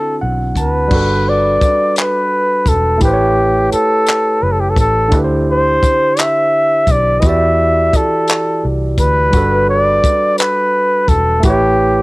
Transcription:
Already playing: D3 C4 D4 E4 F#4 A4
0.21 B1 F#5
0.56 D2 B4 A5, kick, closed hi-hat
0.88 G3 D4, kick, crash
0.92 G1 F#4 A4
0.97 B4
1.29 D5
1.61 muted fingered electric bass stroke, kick, closed hi-hat
1.96 B4, clap, closed hi-hat
2.66 E1 A4, kick, closed hi-hat
2.98 A3 E4, kick, closed hi-hat
3.02 A1 G4 B4
3.07 C5
3.13 C#5
3.72 A4, muted fingered electric bass stroke, closed hi-hat
4.07 clap, closed hi-hat
4.43 F#1 B4
4.52 A4
4.60 G4
4.70 A4
4.76 A1 A4, kick, closed hi-hat
5.08 D3 D4, kick, closed hi-hat
5.13 D2 E4 G4
5.18 B4
5.24 C5
5.51 C5
5.83 muted fingered electric bass stroke, kick, closed hi-hat
6.17 E5, clap, closed hi-hat
6.87 B1, kick, closed hi-hat
6.91 D5
7.20 E2 E3 E4 D#5, kick, closed hi-hat
7.25 F#4 G4 E5
7.29 D5
7.93 A4, muted fingered electric bass stroke, kick, closed hi-hat
8.28 clap, closed hi-hat
8.65 C2
8.98 D2 B4, kick, closed hi-hat
9.30 G3 D4, kick, closed hi-hat
9.34 G1 F#4 A4
9.39 B4
9.70 D5
10.04 kick, closed hi-hat
10.38 B4, clap, closed hi-hat
11.08 E1 A4, kick, closed hi-hat
11.40 A3 E4, kick, closed hi-hat
11.45 A1 G4 B4
11.50 C#5

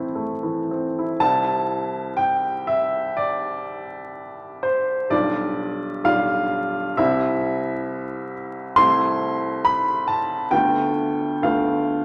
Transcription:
Already playing: E3 C4 E4 A5
0.15 A3
0.43 E3
0.71 C4
0.99 E4
1.20 C2 G3 C4 E4 A5
2.17 G5
2.67 E5
3.17 D5
4.63 C5
5.10 B1 G3 D4 F4 D5
6.04 B1 G3 D4 F4 F5
6.97 C2 G3 C4 E4 E5
8.76 C2 A3 C4 E4 C6
9.65 B5
10.08 A5
10.51 D2 A3 B3 F4 G5
11.42 D2 A3 B3 F4 F5

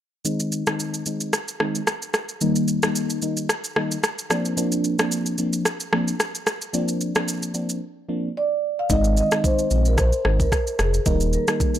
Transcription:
0.25 D#3 G#3 C4 D#4, shaker
0.40 shaker
0.52 shaker
0.67 D#3 G#3 C4 D#4, cross-stick, shaker
0.80 shaker
0.94 shaker
1.06 D#3 G#3 C4 D#4, shaker
1.20 shaker
1.33 cross-stick, shaker
1.48 shaker
1.60 D#3 G#3 C4 D#4, cross-stick
1.75 shaker
1.87 cross-stick, shaker
2.02 shaker
2.14 cross-stick, shaker
2.29 shaker
2.41 D#3 G3 A#3 D#4, shaker
2.56 shaker
2.68 shaker
2.83 D#3 G3 A#3 D#4, cross-stick, shaker
2.96 shaker
3.10 shaker
3.22 D#3 G3 A#3 D#4, shaker
3.37 shaker
3.49 cross-stick, shaker
3.64 shaker
3.76 D#3 G3 A#3 D#4, cross-stick
3.91 shaker
4.04 cross-stick, shaker
4.18 shaker
4.30 F3 A#3 C4 D4, cross-stick, shaker
4.45 shaker
4.57 F3 A#3 C4 D4, shaker
4.72 shaker
4.84 shaker
4.99 F3 A#3 C4 D4, cross-stick, shaker
5.12 shaker
5.26 shaker
5.38 F3 A#3 C4 D4, shaker
5.53 shaker
5.65 cross-stick, shaker
5.80 shaker
5.92 F3 A#3 C4 D4, cross-stick
6.08 shaker
6.20 cross-stick, shaker
6.35 shaker
6.47 cross-stick, shaker
6.61 shaker
6.73 F3 A#3 C4 D4, shaker
6.88 shaker
7.01 shaker
7.15 F3 A#3 C4 D4, cross-stick, shaker
7.28 shaker
7.43 shaker
7.54 F3 A#3 C4 D4, shaker
7.69 shaker
8.09 F3 A#3 C4 D4
8.37 D5
8.79 F5
8.90 G#1 D#3 G#3 C4 D#4 D#5, kick, shaker
9.04 shaker
9.17 D#5, shaker
9.31 D#3 G#3 C4 D#4, cross-stick, shaker
9.44 C5, kick, shaker
9.59 shaker
9.71 A#1 D#3 G#3 C4 D#4, shaker
9.85 A#4, shaker
9.98 C5, kick, cross-stick, shaker
10.13 shaker
10.25 G#1 D#3 G#3 C4 D#4, cross-stick
10.40 A#4, kick, shaker
10.52 kick, cross-stick, shaker
10.67 shaker
10.79 F1 G#4, cross-stick, shaker
10.94 shaker
11.06 D#1 D#3 G3 A#3 D#4 A#4, kick, shaker
11.20 shaker
11.33 A#4, shaker
11.48 D#3 G3 A#3 D#4, cross-stick, shaker
11.60 kick, shaker
11.75 shaker

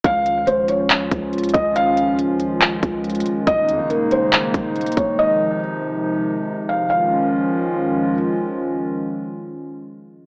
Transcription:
0.04 C#2 D#3 F3 G#3 C#4 F4 F5, kick, closed hi-hat
0.26 closed hi-hat
0.47 C#2 C5, closed hi-hat
0.68 C#5, closed hi-hat
0.90 clap, closed hi-hat
1.11 C#2, kick, closed hi-hat
1.33 closed hi-hat
1.38 closed hi-hat
1.44 closed hi-hat
1.49 closed hi-hat
1.54 C#2 D#5, kick, closed hi-hat
1.76 F5, closed hi-hat
1.97 closed hi-hat
2.19 closed hi-hat
2.40 closed hi-hat
2.62 clap, closed hi-hat
2.83 C#2, kick, closed hi-hat
3.04 closed hi-hat
3.10 closed hi-hat
3.15 closed hi-hat
3.20 closed hi-hat
3.26 closed hi-hat
3.47 D#1 C#3 A#3 D#4 D#5, kick, closed hi-hat
3.69 G2, closed hi-hat
3.79 D#1
3.90 D#1 A#4, closed hi-hat
4.11 C5, closed hi-hat
4.33 clap, closed hi-hat
4.54 D#1, kick, closed hi-hat
4.76 closed hi-hat
4.81 closed hi-hat
4.86 closed hi-hat
4.92 closed hi-hat
4.97 D#1 C#5, kick, closed hi-hat
5.18 C3 F3 D#5
6.69 F5
6.90 D#3 F3 G#3 C#4 F4 F5

